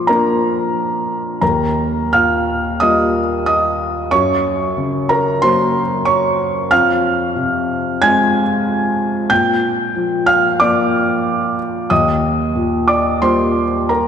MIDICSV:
0, 0, Header, 1, 2, 480
1, 0, Start_track
1, 0, Tempo, 675676
1, 1004, Time_signature, 4, 2, 24, 8
1, 2455, Tempo, 649351
1, 9175, Tempo, 675676
1, 10262, End_track
2, 0, Start_track
2, 0, Title_t, "Felt piano"
2, 0, Program_c, 0, 0
2, 0, Control_c, 0, 64, 127
2, 0, Note_on_c, 0, 46, 57
2, 0, Note_on_c, 0, 53, 50
2, 0, Note_on_c, 0, 72, 61
2, 0, Note_on_c, 0, 74, 52
2, 0, Note_on_c, 0, 84, 79
2, 0, Note_on_c, 0, 86, 67
2, 52, Note_on_c, 0, 82, 89
2, 60, Note_off_c, 0, 53, 0
2, 60, Note_on_c, 0, 53, 50
2, 63, Note_on_c, 0, 58, 49
2, 65, Note_on_c, 0, 70, 68
2, 68, Note_on_c, 0, 62, 53
2, 978, Note_off_c, 0, 53, 0
2, 979, Note_off_c, 0, 46, 0
2, 980, Note_off_c, 0, 58, 0
2, 981, Note_off_c, 0, 70, 0
2, 982, Note_off_c, 0, 62, 0
2, 994, Note_off_c, 0, 82, 0
2, 1005, Note_on_c, 0, 82, 80
2, 1007, Note_on_c, 0, 39, 62
2, 1014, Note_on_c, 0, 70, 61
2, 1018, Control_c, 0, 64, 0
2, 1019, Note_off_c, 0, 72, 0
2, 1020, Note_off_c, 0, 86, 0
2, 1022, Note_off_c, 0, 84, 0
2, 1025, Note_off_c, 0, 74, 0
2, 1147, Control_c, 0, 64, 127
2, 1484, Note_off_c, 0, 70, 0
2, 1508, Note_off_c, 0, 82, 0
2, 1512, Note_on_c, 0, 89, 85
2, 1518, Note_on_c, 0, 46, 49
2, 1522, Note_on_c, 0, 77, 67
2, 1965, Note_off_c, 0, 77, 0
2, 1988, Note_off_c, 0, 89, 0
2, 1989, Note_on_c, 0, 87, 94
2, 1998, Note_on_c, 0, 55, 51
2, 2000, Note_on_c, 0, 75, 69
2, 2001, Note_on_c, 0, 58, 54
2, 2004, Note_on_c, 0, 65, 54
2, 2273, Note_off_c, 0, 46, 0
2, 2435, Note_off_c, 0, 75, 0
2, 2450, Note_off_c, 0, 87, 0
2, 2461, Note_on_c, 0, 87, 90
2, 2472, Note_on_c, 0, 75, 64
2, 2913, Note_off_c, 0, 39, 0
2, 2918, Note_off_c, 0, 55, 0
2, 2919, Note_off_c, 0, 58, 0
2, 2919, Note_off_c, 0, 75, 0
2, 2921, Note_off_c, 0, 65, 0
2, 2940, Note_on_c, 0, 85, 97
2, 2942, Note_on_c, 0, 42, 68
2, 2943, Note_off_c, 0, 87, 0
2, 2948, Note_on_c, 0, 73, 67
2, 2953, Control_c, 0, 64, 0
2, 3089, Control_c, 0, 64, 127
2, 3427, Note_on_c, 0, 49, 54
2, 3639, Note_off_c, 0, 73, 0
2, 3665, Note_off_c, 0, 85, 0
2, 3665, Note_on_c, 0, 82, 91
2, 3673, Note_on_c, 0, 70, 70
2, 3893, Note_off_c, 0, 70, 0
2, 3906, Note_off_c, 0, 82, 0
2, 3906, Note_on_c, 0, 84, 106
2, 3909, Note_on_c, 0, 54, 55
2, 3913, Note_on_c, 0, 66, 61
2, 3913, Note_on_c, 0, 72, 76
2, 3915, Note_on_c, 0, 58, 58
2, 4195, Note_off_c, 0, 49, 0
2, 4357, Note_off_c, 0, 72, 0
2, 4376, Note_on_c, 0, 85, 95
2, 4383, Note_off_c, 0, 84, 0
2, 4383, Note_on_c, 0, 73, 69
2, 4831, Note_off_c, 0, 73, 0
2, 4832, Note_off_c, 0, 42, 0
2, 4833, Note_off_c, 0, 54, 0
2, 4835, Note_off_c, 0, 66, 0
2, 4836, Note_off_c, 0, 58, 0
2, 4857, Note_off_c, 0, 85, 0
2, 4859, Note_on_c, 0, 89, 110
2, 4861, Note_on_c, 0, 41, 70
2, 4866, Note_on_c, 0, 77, 80
2, 4875, Control_c, 0, 64, 0
2, 4988, Control_c, 0, 64, 127
2, 5341, Note_on_c, 0, 48, 57
2, 5805, Note_off_c, 0, 77, 0
2, 5826, Note_on_c, 0, 92, 114
2, 5831, Note_off_c, 0, 89, 0
2, 5832, Note_on_c, 0, 56, 64
2, 5834, Note_on_c, 0, 60, 57
2, 5835, Note_on_c, 0, 80, 90
2, 5836, Note_on_c, 0, 65, 69
2, 6115, Note_off_c, 0, 48, 0
2, 6747, Note_off_c, 0, 41, 0
2, 6747, Note_off_c, 0, 56, 0
2, 6748, Note_off_c, 0, 60, 0
2, 6749, Note_off_c, 0, 65, 0
2, 6749, Note_off_c, 0, 80, 0
2, 6773, Note_on_c, 0, 91, 108
2, 6774, Note_off_c, 0, 92, 0
2, 6778, Note_on_c, 0, 46, 72
2, 6779, Note_on_c, 0, 79, 82
2, 6790, Control_c, 0, 64, 0
2, 6926, Control_c, 0, 64, 127
2, 7255, Note_on_c, 0, 53, 55
2, 7467, Note_off_c, 0, 79, 0
2, 7488, Note_on_c, 0, 89, 103
2, 7494, Note_off_c, 0, 91, 0
2, 7494, Note_on_c, 0, 77, 79
2, 7715, Note_off_c, 0, 77, 0
2, 7729, Note_off_c, 0, 89, 0
2, 7730, Note_off_c, 0, 53, 0
2, 7733, Note_on_c, 0, 86, 97
2, 7741, Note_on_c, 0, 53, 57
2, 7741, Note_on_c, 0, 58, 58
2, 7742, Note_on_c, 0, 65, 61
2, 7743, Note_on_c, 0, 74, 74
2, 8440, Note_off_c, 0, 74, 0
2, 8465, Note_off_c, 0, 86, 0
2, 8673, Note_off_c, 0, 46, 0
2, 8676, Note_off_c, 0, 58, 0
2, 8677, Note_off_c, 0, 53, 0
2, 8677, Note_off_c, 0, 65, 0
2, 8697, Note_on_c, 0, 87, 94
2, 8703, Note_on_c, 0, 39, 65
2, 8708, Note_on_c, 0, 75, 74
2, 8716, Control_c, 0, 64, 0
2, 8815, Control_c, 0, 64, 127
2, 9180, Note_on_c, 0, 46, 56
2, 9383, Note_off_c, 0, 75, 0
2, 9407, Note_off_c, 0, 87, 0
2, 9409, Note_on_c, 0, 86, 89
2, 9418, Note_on_c, 0, 74, 72
2, 9632, Note_off_c, 0, 74, 0
2, 9644, Note_off_c, 0, 86, 0
2, 9652, Note_on_c, 0, 84, 99
2, 9655, Note_on_c, 0, 55, 50
2, 9656, Note_on_c, 0, 72, 69
2, 9659, Note_on_c, 0, 58, 53
2, 9662, Note_on_c, 0, 65, 56
2, 9934, Note_off_c, 0, 46, 0
2, 10108, Note_off_c, 0, 72, 0
2, 10131, Note_on_c, 0, 82, 75
2, 10134, Note_off_c, 0, 84, 0
2, 10138, Note_on_c, 0, 70, 62
2, 10262, Note_off_c, 0, 39, 0
2, 10262, Note_off_c, 0, 55, 0
2, 10262, Note_off_c, 0, 58, 0
2, 10262, Note_off_c, 0, 65, 0
2, 10262, Note_off_c, 0, 70, 0
2, 10262, Note_off_c, 0, 82, 0
2, 10262, End_track
0, 0, End_of_file